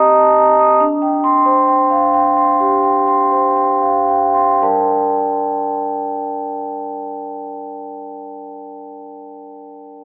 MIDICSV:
0, 0, Header, 1, 2, 480
1, 0, Start_track
1, 0, Key_signature, -2, "minor"
1, 0, Tempo, 848656
1, 459, Time_signature, 4, 2, 24, 8
1, 949, Tempo, 916031
1, 1429, Tempo, 969305
1, 1909, Tempo, 1063830
1, 4832, End_track
2, 0, Start_track
2, 0, Title_t, "Vibraphone"
2, 0, Program_c, 0, 11
2, 0, Control_c, 0, 64, 127
2, 0, Note_on_c, 0, 67, 61
2, 0, Note_on_c, 0, 75, 54
2, 0, Note_on_c, 0, 81, 47
2, 0, Note_on_c, 0, 82, 57
2, 0, Note_on_c, 0, 87, 59
2, 59, Note_off_c, 0, 75, 0
2, 107, Note_off_c, 0, 81, 0
2, 107, Note_on_c, 0, 81, 46
2, 175, Note_off_c, 0, 82, 0
2, 218, Note_on_c, 0, 82, 58
2, 223, Note_off_c, 0, 81, 0
2, 335, Note_off_c, 0, 87, 0
2, 335, Note_on_c, 0, 87, 51
2, 409, Note_off_c, 0, 82, 0
2, 455, Note_on_c, 0, 62, 72
2, 456, Note_off_c, 0, 87, 0
2, 470, Control_c, 0, 64, 0
2, 473, Note_off_c, 0, 67, 0
2, 576, Note_on_c, 0, 79, 53
2, 588, Control_c, 0, 64, 127
2, 701, Note_on_c, 0, 84, 70
2, 773, Note_off_c, 0, 79, 0
2, 824, Note_on_c, 0, 72, 55
2, 899, Note_off_c, 0, 84, 0
2, 949, Note_on_c, 0, 79, 56
2, 1019, Note_off_c, 0, 72, 0
2, 1067, Note_on_c, 0, 77, 41
2, 1138, Note_off_c, 0, 79, 0
2, 1186, Note_off_c, 0, 77, 0
2, 1190, Note_on_c, 0, 79, 55
2, 1310, Note_on_c, 0, 84, 46
2, 1382, Note_off_c, 0, 79, 0
2, 1406, Note_off_c, 0, 62, 0
2, 1432, Note_on_c, 0, 67, 53
2, 1500, Note_off_c, 0, 84, 0
2, 1547, Note_on_c, 0, 79, 52
2, 1618, Note_off_c, 0, 67, 0
2, 1669, Note_on_c, 0, 84, 50
2, 1737, Note_off_c, 0, 79, 0
2, 1788, Note_on_c, 0, 72, 45
2, 1861, Note_off_c, 0, 84, 0
2, 1909, Note_on_c, 0, 79, 42
2, 1979, Note_off_c, 0, 72, 0
2, 2024, Note_on_c, 0, 77, 39
2, 2096, Note_off_c, 0, 79, 0
2, 2143, Note_off_c, 0, 77, 0
2, 2143, Note_on_c, 0, 79, 44
2, 2258, Note_on_c, 0, 84, 45
2, 2337, Note_off_c, 0, 79, 0
2, 2382, Note_off_c, 0, 84, 0
2, 2383, Note_on_c, 0, 55, 50
2, 2385, Note_on_c, 0, 62, 37
2, 2385, Note_on_c, 0, 70, 42
2, 2387, Note_on_c, 0, 74, 38
2, 2388, Note_on_c, 0, 79, 42
2, 2388, Note_on_c, 0, 81, 40
2, 2396, Control_c, 0, 64, 0
2, 2508, Control_c, 0, 64, 127
2, 3804, Note_off_c, 0, 55, 0
2, 3805, Note_off_c, 0, 62, 0
2, 3806, Note_off_c, 0, 70, 0
2, 3807, Note_off_c, 0, 74, 0
2, 3808, Note_off_c, 0, 79, 0
2, 3809, Note_off_c, 0, 81, 0
2, 4832, End_track
0, 0, End_of_file